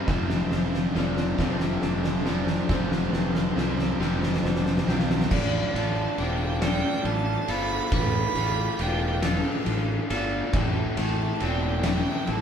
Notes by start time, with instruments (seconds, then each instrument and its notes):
Already playing: overdriven electric guitar C4, string section C4
0.07 fingered electric bass F1, overdriven electric guitar F2 C3 F3, clean electric guitar F3, string section F3 A3 D4 A4, vibraphone E5, kick, snare
0.30 snare
0.51 fingered electric bass F1, clean electric guitar C4, snare
0.74 snare
0.95 fingered electric bass F1, overdriven electric guitar F2 C3 F3, clean electric guitar F3, vibraphone D5, snare
1.17 snare
1.38 fingered electric bass F1, overdriven electric guitar F2 C3 F3, clean electric guitar C4, vibraphone E5, kick, snare
1.60 snare
1.82 fingered electric bass F1, clean electric guitar D4, snare
2.04 snare
2.26 overdriven electric guitar F2 C3 F3, clean electric guitar C4, vibraphone D5, snare
2.47 snare
2.69 fingered electric bass F1, overdriven electric guitar F2 C3 F3, clean electric guitar F3, vibraphone C5, kick, snare
2.92 snare
3.13 fingered electric bass F1, clean electric guitar C4, vibraphone B4, snare
3.35 snare
3.56 fingered electric bass C2, overdriven electric guitar F2 C3 F3, clean electric guitar F3, vibraphone C5, snare
3.79 snare
3.99 fingered electric bass F1, overdriven electric guitar F2 C3 F3, clean electric guitar C4, snare
4.23 snare
4.34 snare
4.43 fingered electric bass F1, clean electric guitar D4, vibraphone C5, snare
4.55 snare
4.66 snare
4.77 snare
4.87 fingered electric bass B1, overdriven electric guitar F2 C3 F3, clean electric guitar C4, vibraphone F5, snare
4.99 snare
5.10 snare
5.21 snare
5.30 fingered electric bass A1, overdriven electric guitar A2 D3 A3 D4 F4, clean electric guitar A2, string section D4 A4 F5 A5, vibraphone D5, kick, crash
5.73 fingered electric bass A1, clean electric guitar D3, overdriven electric guitar A3 D4 F4, violin A5, ride
6.17 fingered electric bass E1, overdriven electric guitar D3 A3 D4 F4, clean electric guitar D4, vibraphone C5, violin G5, ride
6.61 overdriven electric guitar A2 D3 A3 D4 F4, clean electric guitar A4, vibraphone D5, violin G5, snare, ride
7.05 fingered electric bass A1, clean electric guitar F4, violin A5, ride
7.48 fingered electric bass G1, overdriven electric guitar A3 D4 F4, clean electric guitar A4, vibraphone C5, violin B5, ride
7.91 fingered electric bass A1, overdriven electric guitar A2 D3 A3 D4 F4, clean electric guitar A2, vibraphone B4, string section G5, violin B5, kick, ride
8.35 fingered electric bass A1, clean electric guitar D3, overdriven electric guitar A3 D4 F4, vibraphone A4, ride
8.79 fingered electric bass E1, overdriven electric guitar D3 A3 D4 F4, clean electric guitar D4, vibraphone B4, violin G5, ride
9.22 overdriven electric guitar A2 D3 A3 D4 F4, clean electric guitar A4, violin F5, snare, ride
9.66 fingered electric bass A1, clean electric guitar F4, vibraphone A4, ride
10.10 fingered electric bass G1, overdriven electric guitar A3 D4 F4, clean electric guitar A4, vibraphone D5, ride
10.53 fingered electric bass A1, clean electric guitar A2, overdriven electric guitar A2 E3 A3 C4 E4, string section E4 A5, vibraphone E5, kick, ride
10.97 fingered electric bass A1, clean electric guitar A3, overdriven electric guitar A3 C4 E4, violin A5, ride
11.40 fingered electric bass E1, overdriven electric guitar E3 A3 C4 E4, clean electric guitar C4, vibraphone D5, ride
11.45 violin G5
11.83 overdriven electric guitar A2 E3 A3 C4 E4, vibraphone E5, violin G5, snare, ride
12.27 fingered electric bass A1, clean electric guitar E4, violin A5, ride